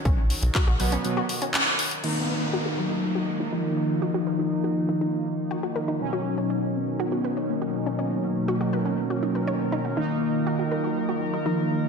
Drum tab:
CC |----------------|x---------------|----------------|----------------|
HH |x-oxx-oxx-oxx-ox|----------------|----------------|----------------|
CP |----x-------x---|----------------|----------------|----------------|
BD |o---o-----------|----------------|----------------|----------------|

CC |----------------|----------------|
HH |----------------|----------------|
CP |----------------|----------------|
BD |----------------|----------------|